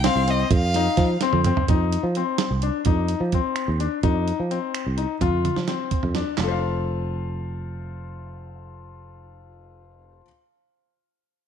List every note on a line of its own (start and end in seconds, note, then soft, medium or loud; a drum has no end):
0.04 0.21 C4 medium
0.04 0.32 F5 medium
0.04 snare loud
0.04 closed hi-hat medium
0.15 0.43 C2 medium
0.28 0.44 C4 medium
0.28 0.52 D#5 medium
0.28 closed hi-hat medium
0.51 0.87 F2 medium
0.51 1.19 F5 medium
0.51 kick loud
0.51 closed hi-hat medium
0.74 1.09 D#4 medium
0.74 snare soft
0.74 closed hi-hat medium
0.97 1.16 F3 medium
0.97 kick medium
0.97 snare soft
0.97 closed hi-hat medium
1.21 1.39 C4 medium
1.21 snare medium
1.21 closed hi-hat medium
1.33 1.52 F2 medium
1.33 high tom medium
1.44 1.63 C4 medium
1.44 closed hi-hat medium
1.44 mid tom medium
1.57 floor tom medium
1.68 1.96 F2 medium
1.68 2.02 D#4 medium
1.68 kick medium
1.68 closed hi-hat medium
1.92 closed hi-hat medium
2.03 2.22 F3 medium
2.15 2.50 C4 medium
2.15 closed hi-hat soft
2.38 snare medium
2.38 closed hi-hat medium
2.51 2.69 C2 medium
2.62 2.80 D4 medium
2.62 closed hi-hat soft
2.85 3.13 F2 medium
2.85 3.20 D#4 medium
2.85 kick medium
2.85 closed hi-hat medium
3.08 closed hi-hat medium
3.20 3.39 F3 medium
3.32 3.67 C4 medium
3.32 kick medium
3.32 closed hi-hat soft
3.56 finger snap medium
3.56 closed hi-hat medium
3.68 3.86 D#2 medium
3.80 3.97 D4 medium
3.80 closed hi-hat soft
4.03 4.31 F2 medium
4.03 4.37 D#4 medium
4.03 kick medium
4.03 closed hi-hat medium
4.28 closed hi-hat soft
4.40 4.58 F3 medium
4.51 4.84 C4 medium
4.51 closed hi-hat medium
4.75 finger snap medium
4.75 closed hi-hat medium
4.86 5.05 C2 medium
4.98 5.14 D#4 medium
4.98 closed hi-hat medium
5.21 5.49 F2 medium
5.21 5.55 F4 medium
5.21 kick medium
5.21 closed hi-hat medium
5.21 high tom soft
5.45 closed hi-hat medium
5.45 high tom medium
5.56 5.75 F3 medium
5.56 snare soft
5.68 6.01 C4 medium
5.68 snare medium
5.68 closed hi-hat soft
5.91 kick medium
5.91 closed hi-hat medium
6.03 6.22 F2 medium
6.03 floor tom medium
6.15 6.32 D4 medium
6.15 snare medium
6.15 closed hi-hat soft
6.38 10.20 F1 medium
6.38 10.21 F4 soft
6.38 snare medium
6.38 clap medium
6.44 10.23 A4 medium
6.48 10.25 C5 soft
6.48 10.27 F5 medium